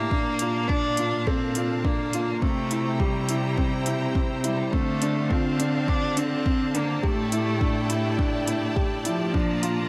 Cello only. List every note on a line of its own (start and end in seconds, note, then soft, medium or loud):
0.00 0.69 A#3 loud
0.68 1.28 D4 loud
1.27 1.86 C4 medium
1.85 2.41 A#3 medium
2.42 3.01 A3 medium
2.99 4.15 G3 medium
4.44 4.74 G3 medium
4.73 5.31 A3 medium
5.29 5.90 C4 medium
5.89 6.19 D4 loud
6.18 6.78 C4 loud
6.76 7.06 A#3 medium
7.05 8.20 A3 medium
9.05 9.89 F3 medium